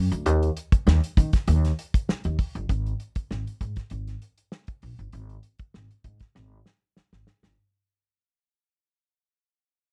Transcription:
0.12 upright bass D2, closed hi-hat
0.26 upright bass D#2, closed hi-hat
0.43 closed hi-hat
0.57 closed hi-hat
0.72 muted upright bass stroke, kick, closed hi-hat
0.87 upright bass D#2, snare
1.04 closed hi-hat
1.17 upright bass D#3, kick, closed hi-hat
1.33 kick, snare, closed hi-hat
1.48 upright bass D#2, closed hi-hat
1.65 snare, closed hi-hat
1.79 closed hi-hat
1.94 kick, closed hi-hat
2.09 muted upright bass stroke, snare
2.24 upright bass D#2, closed hi-hat
2.39 kick, open hi-hat
2.55 upright bass G1, closed hi-hat
2.69 upright bass G#1, kick, closed hi-hat
2.86 closed hi-hat
3.00 closed hi-hat
3.15 muted upright bass stroke, kick, closed hi-hat
3.31 upright bass G#1, snare
3.47 closed hi-hat
3.61 upright bass G#2, kick, closed hi-hat
3.76 kick, snare, closed hi-hat
3.90 upright bass G#1, closed hi-hat
4.07 snare, closed hi-hat
4.22 closed hi-hat
4.38 closed hi-hat
4.52 snare
4.67 kick, closed hi-hat
4.82 upright bass A#1, open hi-hat
4.99 upright bass G1, closed hi-hat
5.13 upright bass G#1, closed hi-hat
5.29 closed hi-hat
5.43 closed hi-hat
5.59 muted upright bass stroke, kick, closed hi-hat
5.74 upright bass G#1, snare
5.91 closed hi-hat
6.04 upright bass G#2, kick, closed hi-hat
6.20 kick, snare, closed hi-hat
6.35 upright bass G#1, snare
6.66 snare
6.96 muted upright bass stroke, snare
7.13 upright bass G#1, snare
7.27 snare
7.43 upright bass G1, snare

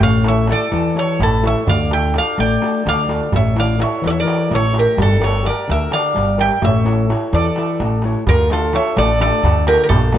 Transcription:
0.00 upright bass A1, steel-string acoustic guitar A3, mandolin C#5, bouzouki F5, darbuka dum
0.24 steel-string acoustic guitar E4 A4 C#5, mandolin C#5, darbuka tek
0.28 bouzouki E5
0.47 steel-string acoustic guitar E4 A4 E5, mandolin A4, darbuka tek
0.52 bouzouki D5
0.60 darbuka tek
0.72 upright bass E2, steel-string acoustic guitar E3, darbuka tek
0.84 darbuka tek
0.95 steel-string acoustic guitar E4 A4 C#5, mandolin A4, darbuka tek
0.99 bouzouki C#5
1.19 upright bass A1, steel-string acoustic guitar A3, mandolin E4, darbuka tek, darbuka dum
1.23 bouzouki A4
1.33 darbuka tek
1.43 steel-string acoustic guitar E4 A4 C#5, mandolin C#5, darbuka tek
1.47 bouzouki E5
1.56 darbuka tek
1.67 upright bass D2, steel-string acoustic guitar D3, mandolin D5, bouzouki F5, darbuka dum
1.90 steel-string acoustic guitar D4 F4 A4, bouzouki G5, darbuka tek
1.95 mandolin E5
2.14 steel-string acoustic guitar D4 F4 A4, mandolin D5, darbuka tek
2.18 bouzouki F5
2.38 upright bass A1, steel-string acoustic guitar A3, mandolin D5, bouzouki G5, darbuka tek
2.62 steel-string acoustic guitar D4 F4 A4, darbuka tek
2.86 upright bass D2, steel-string acoustic guitar D3, mandolin D5, bouzouki F5, darbuka tek
2.99 darbuka tek
3.08 steel-string acoustic guitar D4 F4 A4, darbuka tek
3.32 upright bass A1, steel-string acoustic guitar A3, mandolin C#5, bouzouki E5, darbuka dum
3.56 steel-string acoustic guitar E4 A4 C#5, bouzouki F5, darbuka tek
3.60 mandolin D5
3.79 steel-string acoustic guitar E4 A4 C#5, bouzouki E5, darbuka tek
3.84 mandolin C#5
4.02 upright bass E2, steel-string acoustic guitar E3, darbuka tek
4.07 mandolin A4, bouzouki D5 E5
4.13 mandolin C#5
4.20 mandolin A#4, bouzouki D5
4.25 steel-string acoustic guitar E4 A4 C#5, darbuka tek
4.50 upright bass A1, steel-string acoustic guitar A3, darbuka tek
4.54 mandolin A4, bouzouki C#5
4.63 darbuka tek
4.73 steel-string acoustic guitar E4 A4 C#5, darbuka tek
4.78 mandolin G4, bouzouki A#4
4.97 upright bass G1, steel-string acoustic guitar G3, darbuka dum
5.02 mandolin D4, bouzouki A4
5.20 steel-string acoustic guitar G4 A#4 D5, darbuka tek
5.24 mandolin A4, bouzouki C#5
5.43 steel-string acoustic guitar G4 A#4 D5, bouzouki D5, darbuka tek
5.49 mandolin A#4
5.68 upright bass D2, steel-string acoustic guitar D3, bouzouki E5, darbuka tek
5.73 mandolin A#4
5.91 steel-string acoustic guitar G4 A#4 D5, bouzouki F5, darbuka tek
5.95 mandolin D5
6.14 upright bass G1, steel-string acoustic guitar G3, darbuka tek
6.28 darbuka tek
6.38 steel-string acoustic guitar G4 A#4 D5, bouzouki G5, darbuka tek
6.42 mandolin E5
6.62 upright bass A1, steel-string acoustic guitar A3, bouzouki E5, darbuka dum
6.66 mandolin C#5
6.85 steel-string acoustic guitar E4 A4 C#5, darbuka tek
6.98 darbuka tek
7.09 steel-string acoustic guitar E4 A4 C#5, darbuka tek
7.21 darbuka tek
7.33 upright bass E2, steel-string acoustic guitar E3, mandolin A4, bouzouki D5, darbuka tek
7.56 steel-string acoustic guitar E4 A4 E5, darbuka tek
7.68 darbuka tek
7.80 upright bass A1, steel-string acoustic guitar A3, darbuka tek
7.91 darbuka tek
8.02 steel-string acoustic guitar E4 A4 C#5, darbuka tek
8.15 darbuka tek
8.27 upright bass D2, steel-string acoustic guitar D3, mandolin F4, bouzouki A#4, darbuka dum
8.50 steel-string acoustic guitar D4 F4 A4, mandolin F4, bouzouki A4, darbuka tek
8.62 darbuka tek
8.73 steel-string acoustic guitar D4 F4 A4, mandolin C#5, bouzouki E5, darbuka tek
8.96 upright bass A1, steel-string acoustic guitar A3, mandolin A4, bouzouki D5, darbuka tek
9.20 steel-string acoustic guitar D4 F4 A4, mandolin A4, bouzouki D5, darbuka tek
9.43 upright bass D2, steel-string acoustic guitar D3, darbuka tek, darbuka dum
9.67 steel-string acoustic guitar D4 F4 A4, mandolin G4, bouzouki A#4, darbuka tek
9.84 mandolin G4, bouzouki A#4
9.89 upright bass A#1, steel-string acoustic guitar A#3, mandolin F4, bouzouki A4, darbuka dum
10.12 steel-string acoustic guitar A#3 F4 D5, darbuka tek

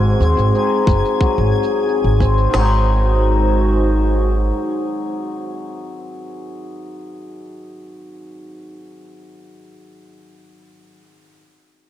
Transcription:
Already playing: upright bass G#1, hammered dulcimer G#2 F#3 C4 D#4 G#4, ambient pad G#3 C4 G#4, synth texture G#5 G#6
0.20 upright bass D#2, hammered dulcimer C4, shaker
0.37 upright bass G#1, shaker
0.54 hammered dulcimer C4 D#4 G#4, shaker
0.87 upright bass F#1, kick, shaker
1.05 shaker
1.21 hammered dulcimer F#3, kick, shaker
1.38 upright bass G#1
1.63 shaker
1.87 hammered dulcimer G#4, shaker
2.04 upright bass G#1
2.20 hammered dulcimer C4, kick, shaker
2.38 shaker
2.50 hammered dulcimer G#2 D#3, snare, crash
2.54 upright bass G#1, hammered dulcimer F#3 C4, ambient pad G#3 D#4 F#4 C5
2.60 hammered dulcimer D#4 G#4

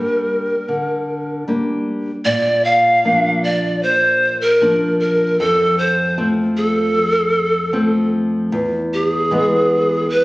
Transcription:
Already playing: nylon-string guitar G3 A#3 D4, pan flute A#4
0.68 nylon-string guitar D3
1.48 nylon-string guitar G3 A#3 D4
2.25 nylon-string guitar A#2, pan flute D5
2.65 pan flute F5
3.05 nylon-string guitar F3 A#3 D4
3.44 pan flute D5
3.83 pan flute C5
4.41 pan flute A#4
4.62 nylon-string guitar F3 A#3 D4
5.00 pan flute A#4
5.39 nylon-string guitar F2, pan flute A4
5.78 pan flute C5
6.18 nylon-string guitar F3 A3 C4
6.57 pan flute A4
7.73 nylon-string guitar F3 A3 C4
8.52 nylon-string guitar E2
8.94 pan flute G4
9.06 pan flute G#4
9.31 nylon-string guitar E3 G#3 B3
10.10 pan flute B4

